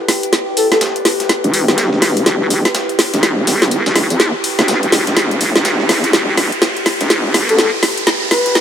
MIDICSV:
0, 0, Header, 1, 6, 480
1, 0, Start_track
1, 0, Key_signature, 1, "minor"
1, 0, Tempo, 483871
1, 325, Time_signature, 4, 2, 24, 8
1, 8538, End_track
2, 0, Start_track
2, 0, Title_t, "Ambient pad"
2, 0, Program_c, 0, 92
2, 0, Note_on_c, 0, 64, 74
2, 0, Note_on_c, 0, 67, 71
2, 0, Note_on_c, 0, 71, 71
2, 0, Note_on_c, 0, 79, 75
2, 8538, Note_off_c, 0, 64, 0
2, 8538, Note_off_c, 0, 67, 0
2, 8538, Note_off_c, 0, 71, 0
2, 8538, Note_off_c, 0, 79, 0
2, 8538, End_track
3, 0, Start_track
3, 0, Title_t, "Soft synth lead"
3, 0, Program_c, 1, 80
3, 565, Note_on_c, 1, 69, 85
3, 659, Note_off_c, 1, 69, 0
3, 712, Note_on_c, 1, 69, 75
3, 771, Note_off_c, 1, 69, 0
3, 7432, Note_on_c, 1, 69, 88
3, 7491, Note_off_c, 1, 69, 0
3, 7524, Note_on_c, 1, 69, 74
3, 7619, Note_off_c, 1, 69, 0
3, 8244, Note_on_c, 1, 71, 94
3, 8538, Note_off_c, 1, 71, 0
3, 8538, End_track
4, 0, Start_track
4, 0, Title_t, "Wobble bass"
4, 0, Program_c, 2, 39
4, 1431, Note_on_c, 2, 28, 96
4, 1648, Note_off_c, 2, 28, 0
4, 1671, Note_on_c, 2, 31, 98
4, 1888, Note_off_c, 2, 31, 0
4, 1911, Note_on_c, 2, 28, 97
4, 2230, Note_off_c, 2, 28, 0
4, 2245, Note_on_c, 2, 28, 94
4, 2608, Note_off_c, 2, 28, 0
4, 3111, Note_on_c, 2, 28, 97
4, 3430, Note_off_c, 2, 28, 0
4, 3444, Note_on_c, 2, 31, 96
4, 3808, Note_off_c, 2, 31, 0
4, 3831, Note_on_c, 2, 28, 95
4, 4048, Note_off_c, 2, 28, 0
4, 4071, Note_on_c, 2, 40, 93
4, 4288, Note_off_c, 2, 40, 0
4, 4551, Note_on_c, 2, 38, 94
4, 4768, Note_off_c, 2, 38, 0
4, 4791, Note_on_c, 2, 28, 97
4, 5008, Note_off_c, 2, 28, 0
4, 5031, Note_on_c, 2, 28, 97
4, 5350, Note_off_c, 2, 28, 0
4, 5364, Note_on_c, 2, 29, 98
4, 5488, Note_off_c, 2, 29, 0
4, 5512, Note_on_c, 2, 28, 98
4, 5830, Note_off_c, 2, 28, 0
4, 5845, Note_on_c, 2, 40, 97
4, 6070, Note_off_c, 2, 40, 0
4, 6085, Note_on_c, 2, 28, 97
4, 6448, Note_off_c, 2, 28, 0
4, 6952, Note_on_c, 2, 28, 97
4, 7270, Note_off_c, 2, 28, 0
4, 7285, Note_on_c, 2, 31, 97
4, 7648, Note_off_c, 2, 31, 0
4, 8538, End_track
5, 0, Start_track
5, 0, Title_t, "Riser"
5, 0, Program_c, 3, 103
5, 0, Note_on_c, 3, 60, 71
5, 8538, Note_off_c, 3, 60, 0
5, 8538, End_track
6, 0, Start_track
6, 0, Title_t, "Drums"
6, 84, Note_on_c, 9, 38, 50
6, 84, Note_on_c, 9, 46, 101
6, 85, Note_on_c, 9, 54, 66
6, 183, Note_off_c, 9, 38, 0
6, 183, Note_off_c, 9, 46, 0
6, 184, Note_off_c, 9, 54, 0
6, 231, Note_on_c, 9, 42, 53
6, 324, Note_off_c, 9, 42, 0
6, 324, Note_on_c, 9, 38, 54
6, 324, Note_on_c, 9, 42, 65
6, 325, Note_on_c, 9, 54, 84
6, 423, Note_off_c, 9, 38, 0
6, 423, Note_off_c, 9, 42, 0
6, 424, Note_off_c, 9, 54, 0
6, 564, Note_on_c, 9, 46, 104
6, 564, Note_on_c, 9, 54, 65
6, 664, Note_off_c, 9, 46, 0
6, 664, Note_off_c, 9, 54, 0
6, 711, Note_on_c, 9, 38, 38
6, 711, Note_on_c, 9, 42, 50
6, 804, Note_off_c, 9, 38, 0
6, 804, Note_off_c, 9, 42, 0
6, 804, Note_on_c, 9, 38, 108
6, 804, Note_on_c, 9, 42, 63
6, 804, Note_on_c, 9, 54, 82
6, 903, Note_off_c, 9, 42, 0
6, 904, Note_off_c, 9, 38, 0
6, 904, Note_off_c, 9, 54, 0
6, 951, Note_on_c, 9, 42, 37
6, 1043, Note_on_c, 9, 38, 53
6, 1043, Note_on_c, 9, 46, 103
6, 1044, Note_on_c, 9, 54, 68
6, 1050, Note_off_c, 9, 42, 0
6, 1143, Note_off_c, 9, 38, 0
6, 1143, Note_off_c, 9, 46, 0
6, 1144, Note_off_c, 9, 54, 0
6, 1190, Note_on_c, 9, 42, 51
6, 1191, Note_on_c, 9, 38, 47
6, 1283, Note_off_c, 9, 38, 0
6, 1283, Note_off_c, 9, 42, 0
6, 1283, Note_on_c, 9, 38, 53
6, 1283, Note_on_c, 9, 42, 66
6, 1284, Note_on_c, 9, 54, 85
6, 1383, Note_off_c, 9, 38, 0
6, 1383, Note_off_c, 9, 42, 0
6, 1383, Note_off_c, 9, 54, 0
6, 1431, Note_on_c, 9, 42, 36
6, 1523, Note_on_c, 9, 46, 106
6, 1524, Note_on_c, 9, 54, 67
6, 1530, Note_off_c, 9, 42, 0
6, 1622, Note_off_c, 9, 46, 0
6, 1623, Note_off_c, 9, 54, 0
6, 1671, Note_on_c, 9, 38, 37
6, 1671, Note_on_c, 9, 42, 51
6, 1764, Note_off_c, 9, 38, 0
6, 1764, Note_off_c, 9, 42, 0
6, 1764, Note_on_c, 9, 38, 111
6, 1764, Note_on_c, 9, 42, 64
6, 1764, Note_on_c, 9, 54, 83
6, 1863, Note_off_c, 9, 38, 0
6, 1863, Note_off_c, 9, 42, 0
6, 1863, Note_off_c, 9, 54, 0
6, 1911, Note_on_c, 9, 38, 43
6, 2004, Note_off_c, 9, 38, 0
6, 2004, Note_on_c, 9, 38, 50
6, 2004, Note_on_c, 9, 46, 79
6, 2104, Note_off_c, 9, 38, 0
6, 2104, Note_off_c, 9, 46, 0
6, 2151, Note_on_c, 9, 42, 53
6, 2243, Note_off_c, 9, 42, 0
6, 2243, Note_on_c, 9, 38, 57
6, 2243, Note_on_c, 9, 42, 65
6, 2244, Note_on_c, 9, 54, 84
6, 2343, Note_off_c, 9, 38, 0
6, 2343, Note_off_c, 9, 42, 0
6, 2343, Note_off_c, 9, 54, 0
6, 2483, Note_on_c, 9, 46, 104
6, 2484, Note_on_c, 9, 38, 39
6, 2484, Note_on_c, 9, 54, 64
6, 2583, Note_off_c, 9, 38, 0
6, 2583, Note_off_c, 9, 46, 0
6, 2583, Note_off_c, 9, 54, 0
6, 2631, Note_on_c, 9, 38, 51
6, 2631, Note_on_c, 9, 42, 48
6, 2723, Note_off_c, 9, 42, 0
6, 2723, Note_on_c, 9, 42, 61
6, 2724, Note_off_c, 9, 38, 0
6, 2724, Note_on_c, 9, 38, 108
6, 2724, Note_on_c, 9, 54, 83
6, 2823, Note_off_c, 9, 38, 0
6, 2823, Note_off_c, 9, 42, 0
6, 2823, Note_off_c, 9, 54, 0
6, 2870, Note_on_c, 9, 42, 34
6, 2964, Note_on_c, 9, 38, 59
6, 2964, Note_on_c, 9, 46, 104
6, 2964, Note_on_c, 9, 54, 69
6, 2969, Note_off_c, 9, 42, 0
6, 3063, Note_off_c, 9, 38, 0
6, 3063, Note_off_c, 9, 46, 0
6, 3064, Note_off_c, 9, 54, 0
6, 3110, Note_on_c, 9, 42, 50
6, 3111, Note_on_c, 9, 38, 57
6, 3203, Note_off_c, 9, 38, 0
6, 3203, Note_off_c, 9, 42, 0
6, 3203, Note_on_c, 9, 38, 59
6, 3203, Note_on_c, 9, 42, 61
6, 3204, Note_on_c, 9, 54, 83
6, 3302, Note_off_c, 9, 38, 0
6, 3302, Note_off_c, 9, 42, 0
6, 3304, Note_off_c, 9, 54, 0
6, 3444, Note_on_c, 9, 46, 107
6, 3445, Note_on_c, 9, 38, 102
6, 3445, Note_on_c, 9, 54, 76
6, 3543, Note_off_c, 9, 46, 0
6, 3544, Note_off_c, 9, 38, 0
6, 3544, Note_off_c, 9, 54, 0
6, 3591, Note_on_c, 9, 38, 55
6, 3591, Note_on_c, 9, 42, 51
6, 3684, Note_off_c, 9, 42, 0
6, 3684, Note_on_c, 9, 42, 64
6, 3685, Note_on_c, 9, 54, 59
6, 3690, Note_off_c, 9, 38, 0
6, 3783, Note_off_c, 9, 42, 0
6, 3784, Note_off_c, 9, 54, 0
6, 3831, Note_on_c, 9, 38, 104
6, 3831, Note_on_c, 9, 54, 76
6, 3924, Note_off_c, 9, 38, 0
6, 3924, Note_on_c, 9, 38, 62
6, 3924, Note_on_c, 9, 46, 104
6, 3931, Note_off_c, 9, 54, 0
6, 4023, Note_off_c, 9, 38, 0
6, 4023, Note_off_c, 9, 46, 0
6, 4071, Note_on_c, 9, 42, 50
6, 4072, Note_on_c, 9, 54, 60
6, 4164, Note_off_c, 9, 42, 0
6, 4164, Note_on_c, 9, 38, 66
6, 4164, Note_on_c, 9, 42, 64
6, 4165, Note_off_c, 9, 54, 0
6, 4165, Note_on_c, 9, 54, 82
6, 4263, Note_off_c, 9, 38, 0
6, 4263, Note_off_c, 9, 42, 0
6, 4264, Note_off_c, 9, 54, 0
6, 4403, Note_on_c, 9, 46, 104
6, 4405, Note_on_c, 9, 54, 69
6, 4503, Note_off_c, 9, 46, 0
6, 4504, Note_off_c, 9, 54, 0
6, 4551, Note_on_c, 9, 38, 57
6, 4551, Note_on_c, 9, 42, 47
6, 4552, Note_off_c, 9, 38, 0
6, 4552, Note_on_c, 9, 38, 38
6, 4644, Note_off_c, 9, 38, 0
6, 4644, Note_off_c, 9, 42, 0
6, 4644, Note_on_c, 9, 38, 109
6, 4644, Note_on_c, 9, 42, 60
6, 4644, Note_on_c, 9, 54, 86
6, 4743, Note_off_c, 9, 42, 0
6, 4744, Note_off_c, 9, 38, 0
6, 4744, Note_off_c, 9, 54, 0
6, 4791, Note_on_c, 9, 42, 35
6, 4884, Note_on_c, 9, 38, 68
6, 4884, Note_on_c, 9, 46, 101
6, 4885, Note_on_c, 9, 54, 66
6, 4890, Note_off_c, 9, 42, 0
6, 4983, Note_off_c, 9, 38, 0
6, 4983, Note_off_c, 9, 46, 0
6, 4984, Note_off_c, 9, 54, 0
6, 5031, Note_on_c, 9, 42, 50
6, 5032, Note_on_c, 9, 38, 50
6, 5124, Note_off_c, 9, 38, 0
6, 5124, Note_off_c, 9, 42, 0
6, 5124, Note_on_c, 9, 38, 70
6, 5124, Note_on_c, 9, 42, 62
6, 5125, Note_on_c, 9, 54, 85
6, 5223, Note_off_c, 9, 38, 0
6, 5223, Note_off_c, 9, 42, 0
6, 5224, Note_off_c, 9, 54, 0
6, 5271, Note_on_c, 9, 42, 34
6, 5364, Note_on_c, 9, 46, 107
6, 5365, Note_on_c, 9, 54, 67
6, 5370, Note_off_c, 9, 42, 0
6, 5463, Note_off_c, 9, 46, 0
6, 5464, Note_off_c, 9, 54, 0
6, 5511, Note_on_c, 9, 38, 37
6, 5511, Note_on_c, 9, 42, 48
6, 5604, Note_off_c, 9, 42, 0
6, 5604, Note_on_c, 9, 42, 61
6, 5605, Note_off_c, 9, 38, 0
6, 5605, Note_on_c, 9, 38, 113
6, 5605, Note_on_c, 9, 54, 83
6, 5703, Note_off_c, 9, 42, 0
6, 5704, Note_off_c, 9, 38, 0
6, 5704, Note_off_c, 9, 54, 0
6, 5752, Note_on_c, 9, 38, 44
6, 5844, Note_off_c, 9, 38, 0
6, 5844, Note_on_c, 9, 38, 69
6, 5844, Note_on_c, 9, 46, 103
6, 5845, Note_off_c, 9, 38, 0
6, 5845, Note_off_c, 9, 46, 0
6, 5845, Note_on_c, 9, 38, 51
6, 5845, Note_on_c, 9, 46, 81
6, 5944, Note_off_c, 9, 38, 0
6, 5944, Note_off_c, 9, 46, 0
6, 5991, Note_on_c, 9, 42, 49
6, 6084, Note_off_c, 9, 42, 0
6, 6084, Note_on_c, 9, 38, 76
6, 6084, Note_on_c, 9, 42, 63
6, 6085, Note_on_c, 9, 54, 87
6, 6183, Note_off_c, 9, 38, 0
6, 6183, Note_off_c, 9, 42, 0
6, 6184, Note_off_c, 9, 54, 0
6, 6324, Note_on_c, 9, 38, 74
6, 6324, Note_on_c, 9, 46, 103
6, 6325, Note_off_c, 9, 38, 0
6, 6325, Note_on_c, 9, 38, 37
6, 6325, Note_on_c, 9, 54, 68
6, 6423, Note_off_c, 9, 46, 0
6, 6424, Note_off_c, 9, 38, 0
6, 6424, Note_off_c, 9, 54, 0
6, 6471, Note_on_c, 9, 42, 50
6, 6564, Note_off_c, 9, 42, 0
6, 6564, Note_on_c, 9, 38, 73
6, 6564, Note_on_c, 9, 42, 62
6, 6565, Note_off_c, 9, 38, 0
6, 6565, Note_on_c, 9, 38, 112
6, 6565, Note_on_c, 9, 54, 85
6, 6663, Note_off_c, 9, 42, 0
6, 6664, Note_off_c, 9, 38, 0
6, 6664, Note_off_c, 9, 54, 0
6, 6711, Note_on_c, 9, 42, 35
6, 6804, Note_on_c, 9, 38, 76
6, 6804, Note_on_c, 9, 46, 102
6, 6805, Note_on_c, 9, 54, 70
6, 6810, Note_off_c, 9, 42, 0
6, 6903, Note_off_c, 9, 38, 0
6, 6903, Note_off_c, 9, 46, 0
6, 6904, Note_off_c, 9, 54, 0
6, 6951, Note_on_c, 9, 42, 52
6, 6952, Note_on_c, 9, 38, 59
6, 7044, Note_off_c, 9, 38, 0
6, 7044, Note_off_c, 9, 42, 0
6, 7044, Note_on_c, 9, 38, 78
6, 7044, Note_on_c, 9, 42, 62
6, 7045, Note_on_c, 9, 54, 89
6, 7143, Note_off_c, 9, 38, 0
6, 7143, Note_off_c, 9, 42, 0
6, 7144, Note_off_c, 9, 54, 0
6, 7284, Note_on_c, 9, 38, 77
6, 7284, Note_on_c, 9, 46, 106
6, 7285, Note_on_c, 9, 54, 66
6, 7383, Note_off_c, 9, 38, 0
6, 7383, Note_off_c, 9, 46, 0
6, 7384, Note_off_c, 9, 54, 0
6, 7431, Note_on_c, 9, 42, 48
6, 7524, Note_off_c, 9, 42, 0
6, 7524, Note_on_c, 9, 38, 82
6, 7524, Note_on_c, 9, 42, 62
6, 7525, Note_off_c, 9, 38, 0
6, 7525, Note_on_c, 9, 38, 110
6, 7525, Note_on_c, 9, 54, 85
6, 7624, Note_off_c, 9, 38, 0
6, 7624, Note_off_c, 9, 42, 0
6, 7624, Note_off_c, 9, 54, 0
6, 7764, Note_on_c, 9, 38, 81
6, 7764, Note_on_c, 9, 46, 104
6, 7765, Note_on_c, 9, 54, 69
6, 7864, Note_off_c, 9, 38, 0
6, 7864, Note_off_c, 9, 46, 0
6, 7864, Note_off_c, 9, 54, 0
6, 7911, Note_on_c, 9, 42, 50
6, 8004, Note_off_c, 9, 42, 0
6, 8004, Note_on_c, 9, 38, 86
6, 8004, Note_on_c, 9, 42, 68
6, 8005, Note_on_c, 9, 54, 91
6, 8103, Note_off_c, 9, 38, 0
6, 8103, Note_off_c, 9, 42, 0
6, 8104, Note_off_c, 9, 54, 0
6, 8245, Note_on_c, 9, 38, 83
6, 8245, Note_on_c, 9, 46, 105
6, 8245, Note_on_c, 9, 54, 68
6, 8344, Note_off_c, 9, 38, 0
6, 8344, Note_off_c, 9, 46, 0
6, 8344, Note_off_c, 9, 54, 0
6, 8392, Note_on_c, 9, 38, 39
6, 8392, Note_on_c, 9, 42, 52
6, 8485, Note_off_c, 9, 38, 0
6, 8485, Note_off_c, 9, 42, 0
6, 8485, Note_on_c, 9, 38, 115
6, 8485, Note_on_c, 9, 42, 65
6, 8485, Note_on_c, 9, 54, 84
6, 8538, Note_off_c, 9, 38, 0
6, 8538, Note_off_c, 9, 42, 0
6, 8538, Note_off_c, 9, 54, 0
6, 8538, End_track
0, 0, End_of_file